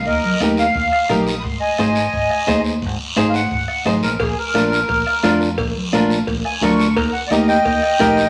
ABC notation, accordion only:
X:1
M:4/4
L:1/8
Q:1/4=174
K:Eb
V:1 name="Accordion"
[Be]2 z f3 b [d'e'] | [_c'=c'] [ea]6 z | z3 [f_g]3 e B | A B6 z |
z4 z a _d'2 | b _g [de] [e=g]4- [eg] |]